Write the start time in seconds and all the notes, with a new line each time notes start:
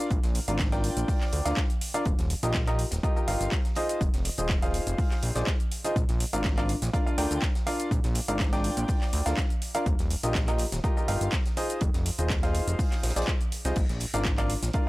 0.11 A#1, kick, closed hi-hat, shaker
0.23 A#1, snare, closed hi-hat, shaker
0.35 closed hi-hat, open hi-hat
0.48 G#1 D4 F4 A#4 D5 F5, closed hi-hat, shaker
0.59 kick, snare, clap, closed hi-hat, shaker
0.72 D4 F4 A#4 D5 G5, snare, closed hi-hat, shaker
0.84 closed hi-hat, open hi-hat
0.97 A#1, closed hi-hat, shaker
1.08 kick, open hi-hat, shaker
1.21 snare, clap, shaker
1.33 D2, closed hi-hat, open hi-hat
1.45 D2 D4 F4 A#4 D5 F5, snare, closed hi-hat, shaker
1.57 kick, snare, clap, closed hi-hat, shaker
1.70 closed hi-hat, shaker
1.81 closed hi-hat, open hi-hat
1.94 D4 F4 A#4 D5 F5, closed hi-hat, shaker
2.06 D#1, kick, closed hi-hat, shaker
2.19 D#1, snare, closed hi-hat, shaker
2.30 closed hi-hat, open hi-hat
2.43 A#1 D#4 F4 G4 A#4 D#5, closed hi-hat, shaker
2.54 kick, snare, clap, closed hi-hat, shaker
2.67 D#4 F4 G4 A#4 D#5, clap, closed hi-hat, shaker
2.79 closed hi-hat, open hi-hat
2.91 D#1, snare, closed hi-hat, shaker
3.03 D#4 F4 G4 A#4 D#5, kick, closed hi-hat, shaker
3.16 D#4 F4 G4 A#4 D#5, shaker
3.28 G1 D#4 F4 G4 A#4 F5, closed hi-hat, open hi-hat
3.41 G1, closed hi-hat, shaker
3.51 kick, snare, clap, closed hi-hat, shaker
3.65 snare, closed hi-hat, shaker
3.75 D#4 F4 G#4 C5 D#5, closed hi-hat, open hi-hat
3.89 closed hi-hat, shaker
4.01 F1, kick, closed hi-hat, shaker
4.14 F1, snare, closed hi-hat, shaker
4.25 closed hi-hat, open hi-hat
4.38 D#1 D#4 F4 G#4 C5 D#5, closed hi-hat, shaker
4.49 kick, snare, clap, closed hi-hat, shaker
4.62 D#4 F4 G#4 C5 F5, snare, closed hi-hat, shaker
4.74 closed hi-hat, open hi-hat
4.87 F1, closed hi-hat, shaker
4.98 kick, open hi-hat, shaker
5.11 snare, clap, shaker
5.23 A#1, closed hi-hat, open hi-hat
5.35 A#1 D#4 F4 G#4 C5 D5, snare, closed hi-hat, shaker
5.47 kick, snare, clap, closed hi-hat, shaker
5.60 closed hi-hat, shaker
5.72 closed hi-hat, open hi-hat
5.84 D#4 F4 G#4 C5 D#5, closed hi-hat, shaker
5.96 A#1, kick, closed hi-hat, shaker
6.08 A#1, snare, closed hi-hat, shaker
6.20 closed hi-hat, open hi-hat
6.33 G#1 D4 F4 A#4 D5 F5, closed hi-hat, shaker
6.44 kick, snare, clap, closed hi-hat, shaker
6.57 D4 F4 A#4 D5 F5, clap, closed hi-hat, shaker
6.69 closed hi-hat, open hi-hat
6.82 A#1, snare, closed hi-hat, shaker
6.93 D4 F4 A#4 D5 F5, kick, closed hi-hat, shaker
7.06 D4 F4 A#4 D5 F5, shaker
7.18 D2 D4 F4 A#4 D5 G5, closed hi-hat, open hi-hat
7.31 D2, closed hi-hat, shaker
7.42 kick, snare, clap, closed hi-hat, shaker
7.55 snare, closed hi-hat, shaker
7.67 D4 F4 A#4 D5 F5, closed hi-hat, open hi-hat
7.80 closed hi-hat, shaker
7.91 A#1, kick, closed hi-hat, shaker
8.03 A#1, snare, closed hi-hat, shaker
8.15 closed hi-hat, open hi-hat
8.28 G#1 D4 F4 A#4 D5 F5, closed hi-hat, shaker
8.40 kick, snare, clap, closed hi-hat, shaker
8.53 D4 F4 A#4 D5 G5, snare, closed hi-hat, shaker
8.64 closed hi-hat, open hi-hat
8.77 A#1, closed hi-hat, shaker
8.88 kick, open hi-hat, shaker
9.01 snare, clap, shaker
9.13 D2, closed hi-hat, open hi-hat
9.26 D2 D4 F4 A#4 D5 F5, snare, closed hi-hat, shaker
9.37 kick, snare, clap, closed hi-hat, shaker
9.50 closed hi-hat, shaker
9.62 closed hi-hat, open hi-hat
9.75 D4 F4 A#4 D5 F5, closed hi-hat, shaker
9.86 D#1, kick, closed hi-hat, shaker
9.99 D#1, snare, closed hi-hat, shaker
10.11 closed hi-hat, open hi-hat
10.23 A#1 D#4 F4 G4 A#4 D#5, closed hi-hat, shaker
10.35 kick, snare, clap, closed hi-hat, shaker
10.48 D#4 F4 G4 A#4 D#5, clap, closed hi-hat, shaker
10.58 closed hi-hat, open hi-hat
10.72 D#1, snare, closed hi-hat, shaker
10.84 D#4 F4 G4 A#4 D#5, kick, closed hi-hat, shaker
10.97 D#4 F4 G4 A#4 D#5, shaker
11.08 G1 D#4 F4 G4 A#4 F5, closed hi-hat, open hi-hat
11.21 G1, closed hi-hat, shaker
11.32 kick, snare, clap, closed hi-hat, shaker
11.46 snare, closed hi-hat, shaker
11.57 D#4 F4 G#4 C5 D#5, closed hi-hat, open hi-hat
11.70 closed hi-hat, shaker
11.81 F1, kick, closed hi-hat, shaker
11.94 F1, snare, closed hi-hat, shaker
12.06 closed hi-hat, open hi-hat
12.18 D#1 D#4 F4 G#4 C5 D#5, closed hi-hat, shaker
12.30 kick, snare, clap, closed hi-hat, shaker
12.43 D#4 F4 G#4 C5 F5, snare, closed hi-hat, shaker
12.55 closed hi-hat, open hi-hat
12.67 F1, closed hi-hat, shaker
12.79 kick, open hi-hat, shaker
12.92 snare, clap, closed hi-hat, shaker
13.03 A#1, snare, closed hi-hat, open hi-hat
13.09 snare, closed hi-hat
13.16 A#1 D#4 F4 G#4 C5 D5, snare, closed hi-hat, shaker
13.22 snare, closed hi-hat
13.27 kick, snare, clap, shaker
13.41 closed hi-hat, shaker
13.52 closed hi-hat, open hi-hat
13.65 C2 D#4 F4 G#4 C5 D#5, snare, closed hi-hat, shaker
13.76 A#1, kick, closed hi-hat, crash, shaker
13.89 A#1, snare, closed hi-hat, shaker
14.00 closed hi-hat, open hi-hat
14.14 G#1 D4 F4 A#4 D5 F5, closed hi-hat, shaker
14.25 kick, snare, clap, closed hi-hat, shaker
14.38 D4 F4 A#4 D5 F5, clap, closed hi-hat, shaker
14.50 closed hi-hat, open hi-hat
14.63 A#1, snare, closed hi-hat, shaker
14.73 D4 F4 A#4 D5 F5, kick, closed hi-hat, shaker